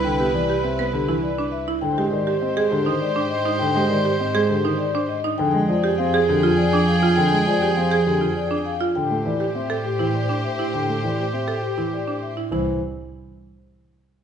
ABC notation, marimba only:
X:1
M:3/4
L:1/16
Q:1/4=101
K:C
V:1 name="Marimba"
z G z G z B z E z D z E | z G z G z _A z _E z D z E | z G z G z _A z _E z D z E | z3 G z _A z F z D z F |
z3 G z _A z F z D z F | z3 G z A z E z D z E | z3 G z A z E z D z E | E2 z8 z2 |]